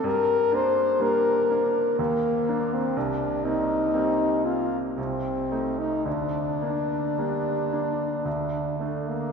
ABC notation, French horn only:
X:1
M:3/4
L:1/16
Q:1/4=58
K:Gm
V:1 name="French horn"
B2 c2 B4 B,3 C | D2 E4 F z C3 E | D8- D2 A, B, |]